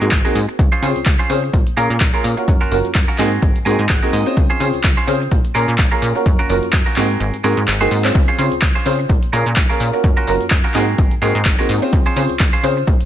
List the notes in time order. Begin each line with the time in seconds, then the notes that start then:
0.01 G#2 A#3 C4 D#4 F#4 G#4, closed hi-hat, shaker
0.11 G#1, kick, clap, closed hi-hat, shaker
0.25 A#3 C4 D#4 F#4 G#4 A#4, closed hi-hat
0.35 G#2, open hi-hat, shaker
0.48 muted clean electric guitar stroke, closed hi-hat, shaker
0.59 C#2, kick, closed hi-hat, shaker
0.72 C#4 F4 G#4 C5, closed hi-hat, shaker
0.82 C#3 C4 C#4 F4 G#4 C5, open hi-hat, shaker
0.96 C#2, closed hi-hat, shaker
1.06 C#2, muted clean electric guitar stroke, kick, clap, closed hi-hat, shaker
1.19 C#4 F4 G#4 C5, closed hi-hat, shaker
1.29 C#3 C4 C#4 F4 G#4 C5, open hi-hat, shaker
1.43 muted clean electric guitar stroke, shaker
1.53 A#1, kick, closed hi-hat, shaker
1.67 A#2, closed hi-hat, shaker
1.77 A#2 A#3 C#4 F4 G#4 A#4, open hi-hat, shaker
1.90 A#2, closed hi-hat, shaker
2.00 A#1, kick, clap, closed hi-hat, shaker
2.13 A#3 C#4 F4 G#4 A#4, closed hi-hat
2.24 A#2, open hi-hat, shaker
2.37 A#3 C#4 F4 F#4 A#4, muted clean electric guitar stroke, closed hi-hat, shaker
2.48 F#2, kick, closed hi-hat, shaker
2.61 F#1 C#4 F4 F#4 A#4, closed hi-hat, shaker
2.71 F#1 A#3 C#4 F4 F#4 A#4, open hi-hat, shaker
2.85 closed hi-hat, shaker
2.95 F#2, muted clean electric guitar stroke, kick, clap, closed hi-hat, shaker
3.08 C#4 F4 F#4 A#4, closed hi-hat, shaker
3.18 G#2 A#3 C4 D#4 F#4 G#4 A#4, clap, open hi-hat, shaker
3.33 shaker
3.42 G#1, kick, closed hi-hat, shaker
3.55 G#2, closed hi-hat, shaker
3.65 G#2 A#3 C4 D#4 F#4 G#4 A#4 G#5, open hi-hat, shaker
3.79 G#2, closed hi-hat, shaker
3.89 G#1 F#5, kick, clap, closed hi-hat, shaker
4.02 A#3 C4 D#4 F#4 G#4 A#4, closed hi-hat
4.13 G#2 D#5, open hi-hat, shaker
4.26 C4 C#4 F4 G#4 C5, muted clean electric guitar stroke, closed hi-hat, shaker
4.37 C#2, kick, closed hi-hat, shaker
4.50 C#4 F4 G#4 C5, closed hi-hat, shaker
4.60 C#3 C4 C#4 F4 G#4 C5, open hi-hat, shaker
4.74 C#2, closed hi-hat, shaker
4.84 C#2, muted clean electric guitar stroke, kick, clap, closed hi-hat, shaker
4.97 C#4 F4 G#4 C5, closed hi-hat, shaker
5.07 C#3 C4 C#4 F4 G#4 C5, open hi-hat, shaker
5.20 muted clean electric guitar stroke, shaker
5.31 A#1, kick, closed hi-hat, shaker
5.45 A#2, closed hi-hat, shaker
5.55 A#2 A#3 C#4 F4 G#4 A#4, open hi-hat, shaker
5.68 A#2, closed hi-hat, shaker
5.78 A#1, kick, clap, closed hi-hat, shaker
5.91 A#3 C#4 F4 G#4 A#4, closed hi-hat
6.02 A#2, open hi-hat, shaker
6.15 A#3 C#4 F4 F#4 A#4, muted clean electric guitar stroke, closed hi-hat, shaker
6.26 F#2, kick, closed hi-hat, shaker
6.39 F#1 C#4 F4 F#4 A#4, closed hi-hat, shaker
6.49 F#1 A#3 C#4 F4 F#4 A#4, open hi-hat, shaker
6.63 F#2, closed hi-hat, shaker
6.73 F#2, muted clean electric guitar stroke, kick, clap, closed hi-hat, shaker
6.86 C#4 F4 F#4 A#4, closed hi-hat, shaker
6.96 G#2 A#3 C4 D#4 F#4 G#4 A#4, clap, open hi-hat, shaker
7.10 closed hi-hat, shaker
7.20 G#1, closed hi-hat, shaker
7.34 closed hi-hat, shaker
7.44 G#2 A#3 C4 D#4 F#4 G#4 A#4, open hi-hat, shaker
7.57 G#2, closed hi-hat, shaker
7.68 G#1, clap, closed hi-hat, shaker
7.81 A#3 C4 D#4 F#4 G#4 C5, closed hi-hat, shaker
7.91 G#2, open hi-hat, shaker
8.04 C4 C#4 F4 G#4 C5, muted clean electric guitar stroke, clap, closed hi-hat, shaker
8.15 C#2, kick, closed hi-hat, shaker
8.28 C#4 F4 G#4 C5, closed hi-hat, shaker
8.38 C#3 C4 C#4 F4 G#4 C5, open hi-hat, shaker
8.52 C#2, closed hi-hat, shaker
8.62 C#2, muted clean electric guitar stroke, kick, clap, closed hi-hat, shaker
8.75 C#4 F4 G#4 C5, closed hi-hat, shaker
8.85 C#3 C4 C#4 F4 G#4 C5, open hi-hat, shaker
8.99 muted clean electric guitar stroke, shaker
9.09 A#1, kick, closed hi-hat, shaker
9.23 A#2, closed hi-hat, shaker
9.33 A#2 A#3 C#4 F4 G#4 A#4, open hi-hat, shaker
9.46 A#2, closed hi-hat, shaker
9.56 A#1, kick, clap, closed hi-hat, shaker
9.69 A#3 C#4 F4 G#4 A#4, closed hi-hat
9.80 A#2, open hi-hat, shaker
9.93 A#3 C#4 F4 F#4 A#4, muted clean electric guitar stroke, closed hi-hat, shaker
10.04 F#2, kick, closed hi-hat, shaker
10.17 F#1 C#4 F4 F#4 A#4, closed hi-hat, shaker
10.27 F#1 A#3 C#4 F4 F#4 A#4, open hi-hat, shaker
10.41 F#2, closed hi-hat, shaker
10.50 F#2, muted clean electric guitar stroke, kick, clap, closed hi-hat, shaker
10.64 C#4 F4 F#4 A#4, closed hi-hat, shaker
10.74 G#2 A#3 C4 D#4 F#4 G#4 A#4, clap, open hi-hat, shaker
10.88 shaker
10.98 G#1, kick, closed hi-hat, shaker
11.11 G#2, closed hi-hat, shaker
11.21 G#2 A#3 C4 D#4 F#4 G#4 A#4, open hi-hat, shaker
11.35 G#2, closed hi-hat, shaker
11.45 G#1, kick, clap, closed hi-hat, shaker
11.58 A#3 C4 D#4 F#4 G#4 A#4, closed hi-hat
11.69 G#2, open hi-hat, shaker
11.82 C4 C#4 F4 G#4 C5, muted clean electric guitar stroke, closed hi-hat, shaker
11.93 C#2, kick, closed hi-hat, shaker
12.06 C#4 F4 G#4 C5, closed hi-hat, shaker
12.16 C#3 C4 C#4 F4 G#4 C5, open hi-hat, shaker
12.29 C#2, closed hi-hat, shaker
12.39 C#2, muted clean electric guitar stroke, kick, clap, closed hi-hat, shaker
12.53 C#4 F4 G#4 C5, closed hi-hat, shaker
12.63 C#3 C4 C#4 F4 G#4 C5, open hi-hat, shaker
12.77 muted clean electric guitar stroke, shaker
12.87 A#1, kick, closed hi-hat, shaker
13.00 A#2, closed hi-hat, shaker